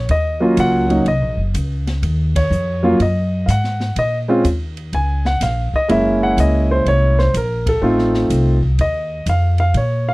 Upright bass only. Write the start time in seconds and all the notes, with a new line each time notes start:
0.09 D#2
0.57 C#2
1.05 C2
1.21 A#1
1.37 F#1
1.54 C#2
2.02 D#2
2.50 F2
2.99 F#2
3.48 G#2
3.96 A#2
4.44 D#2
4.93 C#2
5.41 A#1
5.73 muted upright bass stroke
5.89 F#1
6.37 C#2
6.86 C2
7.34 A#1
7.82 A1
8.30 C2
8.78 D#2
9.26 F2
9.74 A#2